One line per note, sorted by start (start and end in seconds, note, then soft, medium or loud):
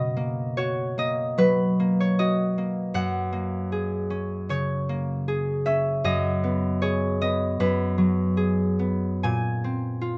0.00 2.99 B2 medium
0.00 0.15 A#3 medium
0.00 0.57 F#4 medium
0.00 0.97 D#5 loud
0.00 0.38 F#5 loud
0.17 0.97 A#3 medium
0.57 2.18 F#4 medium
0.57 1.27 C#5 medium
0.98 1.78 A#3 medium
0.98 2.18 D#5 medium
1.38 5.28 F#3 medium
1.38 2.98 B4 medium
1.80 2.57 A#3 medium
2.00 2.33 C#5 medium
2.19 6.10 F#4 medium
2.19 2.99 D#5 medium
2.58 3.31 A#3 soft
2.94 6.03 F#2 medium
2.94 6.85 F#5 loud
3.32 4.88 A#3 medium
3.72 5.27 G#4 medium
4.10 5.65 C#4 medium
4.49 6.07 C#3 medium
4.49 6.07 C#5 medium
4.89 8.79 A#3 medium
5.28 6.81 G#4 medium
5.66 6.07 C#4 medium
5.66 6.30 E5 medium
6.04 7.59 F#2 medium
6.04 7.20 D#5 medium
6.44 7.20 B3 soft
6.82 8.36 G#4 medium
6.82 7.48 C#5 medium
7.21 8.78 B3 soft
7.21 9.28 D#5 medium
7.60 9.28 F#2 medium
7.60 9.28 B4 medium
7.98 9.28 F#3 medium
8.37 10.18 G#4 medium
8.79 9.27 B3 soft
9.23 10.18 A#2 medium
9.23 10.18 G#5 medium
9.64 10.18 C4 soft
10.01 10.18 F4 medium